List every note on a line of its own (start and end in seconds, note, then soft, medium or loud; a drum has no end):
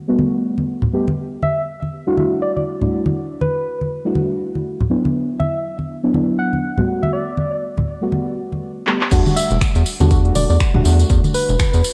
0.08 0.91 G3 medium
0.08 0.91 A3 medium
0.08 0.91 B3 medium
0.08 0.91 F#4 loud
0.19 high conga medium
0.58 high conga medium
0.82 low conga medium
0.93 1.05 G3 medium
0.93 1.05 A3 medium
0.93 1.05 B3 medium
0.93 1.06 G4 medium
1.08 high conga medium
1.42 1.63 E5 medium
1.42 high conga medium
1.82 high conga medium
2.07 2.15 G3 medium
2.07 2.15 A3 medium
2.07 2.15 D4 medium
2.07 2.15 E4 medium
2.07 2.15 F#4 loud
2.17 2.77 G3 medium
2.17 2.78 A3 medium
2.17 2.78 D4 medium
2.17 2.78 E4 medium
2.17 2.78 F#4 medium
2.17 high conga medium
2.42 2.51 D5 medium
2.56 2.63 D5 medium
2.56 high conga medium
2.81 4.01 G3 medium
2.81 4.02 A3 medium
2.81 4.02 D4 medium
2.81 4.02 E4 medium
2.81 4.02 F#4 medium
2.81 low conga medium
3.06 high conga medium
3.41 3.91 B4 medium
3.41 high conga medium
3.81 high conga medium
4.05 4.87 G3 medium
4.05 4.87 A3 medium
4.05 4.88 D4 medium
4.05 4.88 E4 medium
4.05 4.88 F#4 loud
4.15 high conga medium
4.55 high conga medium
4.81 low conga medium
4.89 6.00 F#3 medium
4.89 6.00 B3 medium
4.89 6.00 D4 medium
4.89 6.00 E4 loud
5.05 high conga medium
5.40 5.59 E5 medium
5.40 high conga medium
5.79 high conga medium
6.03 6.11 F#3 medium
6.03 6.12 B3 medium
6.03 6.12 D4 medium
6.03 6.12 E4 loud
6.13 6.74 F#3 medium
6.13 6.74 B3 medium
6.13 6.75 D4 medium
6.13 6.75 E4 medium
6.13 high conga medium
6.39 6.88 F#5 medium
6.53 high conga medium
6.77 7.98 G3 medium
6.77 7.98 A3 medium
6.77 7.99 B3 medium
6.77 7.99 F#4 medium
6.77 low conga medium
7.03 7.11 E5 medium
7.03 high conga medium
7.13 7.63 D5 medium
7.37 high conga medium
7.77 high conga medium
7.77 low conga medium
8.01 8.84 G3 medium
8.01 8.84 A3 medium
8.01 8.84 B3 medium
8.01 8.85 F#4 loud
8.12 high conga medium
8.52 high conga medium
8.87 8.99 G3 medium
8.87 8.99 A3 medium
8.87 8.99 B3 medium
8.87 8.99 G4 medium
8.87 clap medium
9.01 clap medium
9.11 9.22 E2 loud
9.11 9.86 G3 loud
9.11 9.86 A3 medium
9.11 9.86 D4 loud
9.11 9.86 F#4 loud
9.11 kick loud
9.11 closed hi-hat medium
9.11 crash loud
9.11 tambourine medium
9.26 tambourine soft
9.26 high conga loud
9.36 9.56 E5 loud
9.36 open hi-hat loud
9.36 tambourine loud
9.50 9.58 E1 loud
9.50 closed hi-hat soft
9.50 tambourine soft
9.61 finger snap loud
9.61 kick loud
9.61 closed hi-hat medium
9.61 tambourine medium
9.61 high conga medium
9.75 9.83 E2 loud
9.75 closed hi-hat medium
9.75 tambourine soft
9.86 open hi-hat loud
9.86 tambourine medium
10.00 10.31 E2 medium
10.00 10.08 G3 medium
10.00 10.08 A3 medium
10.00 10.08 D4 medium
10.00 10.08 F#4 loud
10.00 closed hi-hat soft
10.00 tambourine soft
10.00 high conga loud
10.10 10.71 G3 medium
10.10 10.71 A3 medium
10.10 10.71 D4 medium
10.10 10.72 F#4 medium
10.10 kick loud
10.10 closed hi-hat medium
10.10 tambourine medium
10.25 closed hi-hat soft
10.35 10.46 E1 medium
10.35 10.45 D5 medium
10.35 open hi-hat loud
10.35 tambourine loud
10.35 high conga medium
10.50 10.58 E2 medium
10.50 10.56 D5 medium
10.50 tambourine soft
10.60 finger snap loud
10.60 kick loud
10.60 closed hi-hat medium
10.60 tambourine medium
10.74 10.82 E1 medium
10.74 11.93 G3 medium
10.74 11.93 A3 medium
10.74 11.93 D4 medium
10.74 11.93 F#4 medium
10.74 high conga medium
10.74 low conga loud
10.85 11.04 E2 loud
10.85 open hi-hat loud
10.85 tambourine medium
10.99 closed hi-hat medium
10.99 tambourine soft
11.09 11.20 E2 loud
11.09 kick loud
11.09 closed hi-hat medium
11.09 tambourine medium
11.24 closed hi-hat soft
11.24 tambourine soft
11.24 high conga loud
11.34 11.84 B4 loud
11.34 open hi-hat loud
11.34 tambourine medium
11.49 11.57 E1 medium
11.49 closed hi-hat soft
11.49 tambourine soft
11.59 finger snap loud
11.59 kick loud
11.59 closed hi-hat medium
11.59 tambourine medium
11.59 high conga medium
11.73 11.82 E2 loud
11.73 closed hi-hat medium
11.73 tambourine soft
11.84 open hi-hat loud
11.84 tambourine loud